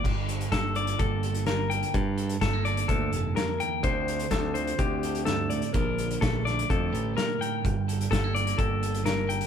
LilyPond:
<<
  \new Staff \with { instrumentName = "Clean electric guitar" } { \time 4/4 \key g \dorian \tempo 4 = 126 r4 a'8 d''8 a'4 bes'8 g''8 | r4 a'8 d''8 a'4 bes'8 g''8 | c''4 a'8 c''8 g'4 a'8 d''8 | bes'4 a'8 d''8 a'4 bes'8 g''8 |
r4 a'8 d''8 a'4 bes'8 g''8 | }
  \new Staff \with { instrumentName = "Clean electric guitar" } { \time 4/4 \key g \dorian << { <d g>8 a'8 bes8 f'8 bes8 a'8 f'8 a'8 | r8 a'8 g16 bes16 f'8 bes8 a'4. | <d c' f' a'>8 a'8 c'8 f'8 c'8 a'4. | <d d' f'>8 f'8 a8 d'8 a8 g'4. |
r8 a'8 g16 bes16 f'8 bes8 a'8 f'8 a'8 | } \\ { g,4. d4. d4 | g,4. d4. f,8 e,8 | d,4. d4. g,8 a,8 | bes,4. d4. bes,8 a,8 |
g,4. d4. d4 | } >> }
  \new Staff \with { instrumentName = "Picked electric bass" } { \clef bass \time 4/4 \key g \dorian g,,4 g,,4 g,,2 | g,4 g,,4 d,8 f,,8 r4 | d,4 d,4 d,2 | bes,,4 bes,,4 f,8 a,,8 r4 |
g,,4 g,,4 g,,2 | }
  \new DrumStaff \with { instrumentName = "Drums" } \drummode { \time 4/4 <cymc bd>8 hh16 hh16 <hh bd sn>8 hh16 hh16 <hh bd>8 hh16 hh16 <hh sn>8 hh16 hh16 | <hh bd>8 hh16 hh16 <hh bd sn>8 hh16 hh16 <hh bd>8 hh8 <hh sn>8 hh8 | <hh bd>8 hh16 hh16 <hh bd sn>8 hh16 hh16 <hh bd>8 hh16 hh16 <hh sn>8 hh16 hh16 | <hh bd>8 hh16 hh16 <hh bd sn>8 <hh sn>16 hh16 <hh bd>8 hh8 <hh sn>8 hh8 |
<hh bd>8 hh16 hh16 <hh bd sn>8 hh16 hh16 <hh bd>8 hh16 hh16 <hh sn>8 hh16 hh16 | }
>>